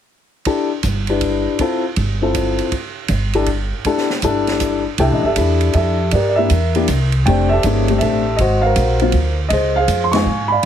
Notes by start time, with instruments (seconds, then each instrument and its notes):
0.45 grand piano D4 E4 G4 A4, kick, ride
0.83 upright bass G1, kick, hi-hat pedal, ride
1.07 grand piano D4 E4 G4 B4, ride
1.21 kick, ride
1.59 grand piano C4 E4 F4 A4, kick, ride
1.96 upright bass G1, kick, ride
2.22 grand piano C4 E4 F4 A4
2.34 kick, hi-hat pedal, ride
2.58 ride
2.72 kick, ride
3.08 upright bass G1, kick, hi-hat pedal, ride
3.33 grand piano D4 E4 G4 A4, ride
3.46 kick, ride
3.84 grand piano D4 E4 G4 A4, kick, ride
3.98 snare
4.10 snare
4.22 upright bass G1, grand piano D4 E4 G4 A4, kick, hi-hat pedal, ride
4.47 snare, ride
4.60 kick, hi-hat pedal, ride
4.98 upright bass C2, grand piano D4 E4 G4 A4 D5 E5 G5, kick, ride
5.11 upright bass A1, grand piano D#5
5.23 upright bass G1, grand piano G4 A4 E5
5.36 upright bass E2, grand piano D4 E4 G4 A4, kick, hi-hat pedal, ride
5.61 ride
5.73 upright bass F2, grand piano G4 A4 E5, kick, ride
6.11 upright bass G2, grand piano G4 A#4 D5, kick, ride
6.29 grand piano D5
6.36 grand piano A#3 D4 E4 G4 A#4 E5
6.50 upright bass E2, kick, hi-hat pedal, ride
6.75 grand piano A#3 D4 E4 G4, ride
6.88 upright bass C2, kick, hi-hat pedal, ride
7.12 ride
7.26 upright bass F1, grand piano A3 C4 D4 G4 C5 D5 G5, kick, ride
7.49 grand piano A4 E5
7.54 grand piano G4
7.63 upright bass G1, grand piano A#3 C#4 D#4 G#4, kick, hi-hat pedal, ride
7.88 grand piano A3 C4 D4 G4, ride
7.98 upright bass A1, grand piano A4 E5, kick, ride
8.03 grand piano G4
8.36 upright bass G#1, grand piano F#4 D#5, kick, ride
8.41 grand piano C5
8.61 grand piano F5
8.66 grand piano A#4 C5
8.76 upright bass A#1, kick, hi-hat pedal, ride
8.99 grand piano F#3 A#3 C4 F4, ride
9.12 upright bass D2, kick, ride
9.49 upright bass C#2, grand piano D#5, kick, ride
9.53 grand piano G#4 C5
9.76 grand piano C5 F5
9.80 grand piano G#4
9.88 upright bass F2, kick, hi-hat pedal, ride
10.04 grand piano C6
10.12 grand piano F3 G#3 C4 D#4 F5 C#6, snare, ride
10.16 grand piano G#5
10.26 upright bass G#2
10.48 grand piano D5 B5
10.52 grand piano F5